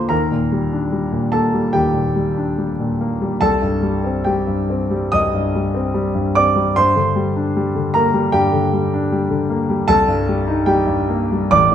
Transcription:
Already playing: A#2 D3 A#3 D4 F4 C5 D5 C6 D6
0.09 D#2 A#4 A#5
0.31 A#2
0.52 G3
0.73 D4
0.92 G3
1.12 A#2
1.32 A#3 A4 A5
1.54 G3
1.73 D#2 G4 G5
1.93 A#2
2.16 G3
2.37 D4
2.58 G3
2.80 A#2
3.01 A#3
3.22 G3
3.41 C2 A4 A5
3.62 G2
3.83 G3
4.04 C4
4.24 G3 G4 G5
4.47 G2
4.70 C4
4.91 G3
5.12 C2 D#5 D#6
5.34 G2
5.55 G3
5.74 C4
5.94 G3
6.15 G2
6.35 C4 D5 D6
6.56 G3
6.76 G2 C5 C6
6.96 D3
7.16 G3
7.36 D4
7.57 G3
7.75 D3
7.94 A#3 A#4 A#5
8.14 G3
8.32 G2 G4 G5
8.52 D3
8.73 G3
8.93 D4
9.12 G3
9.30 D3
9.50 A#3
9.70 G3
9.88 C2 A4 A5
10.08 G2
10.29 G3
10.47 D#4
10.66 G3 G4 G5
10.87 G2
11.09 A#3
11.32 G3
11.51 A1 D5 D6
11.71 A2

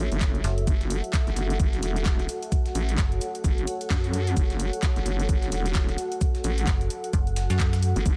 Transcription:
Already playing: F#4 A4 C#5 E5
0.12 F#1, closed hi-hat
0.21 kick, snare, clap, closed hi-hat, shaker
0.35 closed hi-hat
0.44 F#1, snare, open hi-hat, shaker
0.58 closed hi-hat
0.67 F#1 F#5, kick, closed hi-hat, shaker
0.81 snare, closed hi-hat
0.90 open hi-hat, shaker
1.04 closed hi-hat
1.13 kick, snare, clap, closed hi-hat, shaker
1.27 F#1, snare, closed hi-hat
1.36 snare, open hi-hat, shaker
1.50 closed hi-hat
1.59 G1, kick, closed hi-hat, shaker
1.73 snare, closed hi-hat
1.83 E1, snare, open hi-hat, shaker
1.88 C#5
1.96 closed hi-hat
2.06 kick, snare, clap, closed hi-hat, shaker
2.19 snare, closed hi-hat
2.29 open hi-hat, shaker
2.43 closed hi-hat
2.52 kick, closed hi-hat, shaker
2.66 snare, closed hi-hat
2.75 A1, open hi-hat, shaker
2.89 closed hi-hat
2.98 F#1, kick, snare, clap, closed hi-hat, shaker
3.12 closed hi-hat
3.21 open hi-hat, shaker
3.35 closed hi-hat
3.44 G1, kick, closed hi-hat, shaker
3.58 closed hi-hat
3.67 open hi-hat, shaker
3.81 closed hi-hat
3.90 F#2, kick, snare, clap, closed hi-hat, open hi-hat
4.04 closed hi-hat
4.13 open hi-hat, shaker
4.27 closed hi-hat
4.37 F#1, kick, closed hi-hat, shaker
4.50 snare, closed hi-hat
4.60 open hi-hat, shaker
4.73 closed hi-hat
4.83 kick, snare, clap, closed hi-hat, shaker
4.96 F#1, snare, closed hi-hat
5.06 snare, open hi-hat, shaker
5.20 closed hi-hat
5.29 G1, kick, closed hi-hat, shaker
5.42 snare, closed hi-hat
5.52 E1, snare, open hi-hat, shaker
5.57 F#5
5.66 closed hi-hat
5.75 kick, snare, clap, closed hi-hat, shaker
5.89 snare, closed hi-hat
5.98 open hi-hat, shaker
6.12 closed hi-hat
6.21 kick, closed hi-hat, shaker
6.35 snare, closed hi-hat
6.44 A1, open hi-hat, shaker
6.58 closed hi-hat
6.67 F#1, kick, snare, clap, closed hi-hat, shaker
6.81 closed hi-hat
6.90 open hi-hat, shaker
7.04 closed hi-hat
7.13 F#1, kick, closed hi-hat, shaker
7.27 closed hi-hat
7.36 snare, open hi-hat, shaker
7.50 F#2, snare, closed hi-hat, shaker
7.60 kick, snare, clap, closed hi-hat, shaker
7.73 snare, closed hi-hat, shaker
7.83 open hi-hat, shaker
7.96 G1, closed hi-hat
8.06 F#1 B4, kick, closed hi-hat, shaker

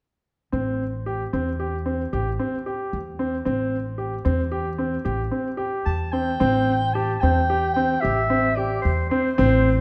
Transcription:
0.52 A1 C4
1.06 G4
1.33 E2 C4
1.60 G4
1.86 C4
2.13 A1 G4
2.39 C4
2.66 G4
2.93 E2
3.19 C4
3.45 A1 C4
3.98 G4
4.25 E2 C4
4.52 G4
4.78 C4
5.05 A1 G4
5.31 C4
5.57 G4
5.86 E2 A5
6.13 C4 G5
6.40 A1 C4
6.94 G4 A5
7.21 E2 C4 G5
7.50 G4
7.74 C4 G5
8.01 A1 G4 E5
8.30 C4
8.56 G4 D5
8.82 E2 C5
9.10 C4 C5
9.38 A1 C4

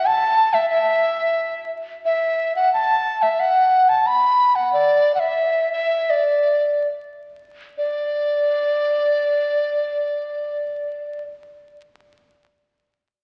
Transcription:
0.07 A5
0.54 E5
0.69 E5
2.05 E5
2.56 F#5
2.73 A5
3.22 E5
3.40 F#5
3.89 A5
4.07 B5
4.55 F#5
4.73 D5
5.15 F#5
5.20 E5
5.72 E5
6.10 D5
7.78 D5

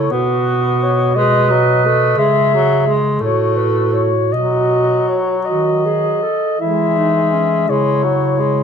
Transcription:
Already playing: C#3 A3 E4 C#5
0.11 B2 B3 F#4 B4
0.83 C#5
1.15 G#3 B4 D#5
1.50 F#3
1.85 A3
2.17 C#3 G#3 G#4 E5
2.54 F#3
2.87 G#3
3.21 A2 A3 F#4 C#5
3.57 B4
3.93 C#5
4.33 B2 F#3 F#4 D#5
5.09 C#5
5.45 D#3 F#4 D#5
5.85 G#4
6.22 A4
6.60 E3 G#3 E4 E5
6.97 D#4
7.34 C#4
7.68 C#3 G#3 E4 C#5
8.04 F#3
8.39 G#3

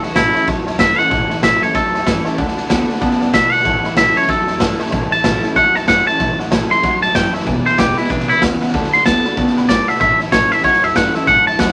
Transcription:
Already playing: A2 E3
0.02 F#4 C#5 E5 A5, snare
0.15 A1 A2 E3 F#3 A3 C#4 E4 C#5 E5 A5, kick, snare, hi-hat pedal
0.34 A2 E3 C#4 E4 C#5 E5 A5, muted upright bass stroke, snare
0.48 A1 E2 A2 F#3 C#5 E5 A5, kick, snare
0.67 E2 C#5 E5 A5, snare
0.79 G2 A2 E3 A3 C#4 E4 C#5 E5 A5, kick, snare, hi-hat pedal
0.98 A2 E3 C#4 E4 C#5 E5 F#5 A5, muted upright bass stroke, snare
1.10 A1 A2 E3 C#5 E5 A5, kick, snare
1.29 C#5 E5 A5, muted upright bass stroke, snare
1.43 A1 A2 E3 F#3 A3 C#4 E4 C#5 E5 A5, kick, snare, hi-hat pedal
1.62 A2 E3 C#4 E4 C#5 E5 A5, muted upright bass stroke, snare
1.74 A1 E2 A2 F#3 A4 C#5 E5 A5, kick, snare
1.94 E2 C#5 E5 A5, snare
2.06 G2 A2 E3 A3 C#4 E4 C#5 E5 A5, kick, snare, hi-hat pedal
2.25 A2 E3 C#4 E4 C#5 E5 A5, muted upright bass stroke, snare
2.38 D2 D3 A3 D5 F#5 A5, kick, snare
2.48 snare
2.57 D5 F#5 A5, muted upright bass stroke, snare
2.69 D2 D3 A3 B3 D4 F#4 D5 F#5 A5, kick, snare, hi-hat pedal
2.88 D3 A3 D4 F#4 D5 F#5 A5, muted upright bass stroke, snare
2.95 snare
3.00 C#3 D3 B3 D5 F#5 A5, kick, snare
3.11 snare
3.21 A2 D5 F#5 A5, snare
3.33 B2 D3 A3 D5 E5 A5, kick, snare, hi-hat pedal
3.52 D3 A3 D5 F#5 A5, muted upright bass stroke, snare
3.59 snare
3.65 A1 A2 E3 C#5 E5 A5, kick, snare
3.84 C#5 E5 B5, muted upright bass stroke, snare
3.97 A1 A2 E3 F#3 A3 C#4 E4 C#5 E5 A5, kick, snare, hi-hat pedal
4.16 A2 E3 C#4 E4 C#5 E5 A5, muted upright bass stroke, snare
4.22 snare
4.28 E2 A2 F#3 A4 C#5 E5 A5, kick, snare
4.47 E2 C#5 E5 A5, snare
4.60 G2 A2 E3 A3 C#4 E4 C#5 E5 A5, kick, snare, hi-hat pedal
4.79 A2 E3 C#4 E4 C#5 E5 A5, muted upright bass stroke, snare
4.86 snare
4.91 A1 A2 E3 C#5 E5 A5, kick, snare
5.11 C#5 E5 A5, muted upright bass stroke, snare
5.24 A1 A2 E3 F#3 A3 C#4 E4 C#5 E5 A5, kick, snare, hi-hat pedal
5.43 A2 E3 C#4 E4 C#5 E5 A5, snare
5.56 A1 E2 A2 F#3 C#5 E5 F#5 A5, kick, snare
5.75 E2 C#5 E5 A5, snare
5.88 G2 A2 E3 A3 C#4 E4 C#5 E5 F#5 A5, kick, snare, hi-hat pedal
6.07 A2 E3 C#4 E4 C#5 E5 A5, muted upright bass stroke, snare
6.19 A1 A2 E3 C#5 E5 A5, kick, snare
6.38 C#5 E5 F#5, muted upright bass stroke, snare
6.51 A1 A2 E3 F#3 A3 C#4 E4 C#5 E5 A5, kick, snare, hi-hat pedal
6.70 A2 E3 C#4 E4 C#5 E5 A5 C6, muted upright bass stroke, snare
6.83 A1 G2 A2 F#3 C#5 E5 F#5, kick, snare
7.02 E2 C#5 E5 A5, snare
7.15 F#2 G2 A2 E3 C#5 E5 G5 A5, kick, snare, hi-hat pedal
7.33 A2 E3 C#5 E5 A5, muted upright bass stroke, snare
7.41 snare
7.45 E1 E2 B2 B4 D5 E5 G#5, kick, snare
7.66 B4 C5 E5 G#5, snare
7.78 E1 E2 C#3 E3 G#3 B3 E4 G4 B4 E5 G#5, kick, snare, hi-hat pedal
7.97 E2 B2 E4 B4 E5 G#5, snare
8.04 snare
8.10 E1 E2 B2 C#3 D4 B4 E5 G#5, kick, snare
8.20 snare
8.29 B1 E4 B4 E5 B5, snare
8.41 D2 E2 B2 C#3 B4 E5 F#5, kick, snare, hi-hat pedal
8.61 E2 B2 B4 E5 F#5, snare
8.68 snare
8.73 D2 D3 A3 D5 F#5 A5, kick, snare
8.84 snare
8.93 D5 F#5 A5 C6, muted upright bass stroke, snare
9.05 D2 D3 A3 B3 D4 F#4 D5 F#5 A5 B5, kick, snare, hi-hat pedal
9.24 D3 A3 D4 F#4 D5 F#5 B5, muted upright bass stroke, snare
9.37 D2 C#3 D3 B3 D5 F#5 A5, kick, snare
9.47 snare
9.56 A2 D5 F#5 B5, snare
9.69 G1 B2 D3 A3 D5 F#5 A5, kick, snare, hi-hat pedal
9.88 D3 A3 D5 E5 F#5 A5, muted upright bass stroke, snare
9.95 snare
10.00 A1 A2 E3 C#5 E5 A5, kick, snare
10.19 C#5 E5 A5, muted upright bass stroke, snare
10.32 A1 A2 E3 F#3 A3 C#4 E4 C#5 E5 A5, kick, snare, hi-hat pedal
10.51 A2 E3 C#4 E4 C#5 E5 A5, muted upright bass stroke, snare
10.58 snare
10.64 A1 E2 A2 F#3 C#5 E5 F#5, kick, snare
10.74 snare
10.83 E2 C#5 E5 A5, snare
10.95 G2 A2 E3 A3 C#4 E4 C#5 E5 F#5 A5, kick, snare, hi-hat pedal
11.14 A2 E3 C#4 E4 C#5 E5 A5, snare
11.27 A1 G2 A2 E3 C#5 E5 F#5 A5, kick, snare
11.46 C#5 E5 A5, muted upright bass stroke, snare
11.58 D#2 F#2 A2 F#3 C#5 E5 F#5 A5, kick, snare, hi-hat pedal

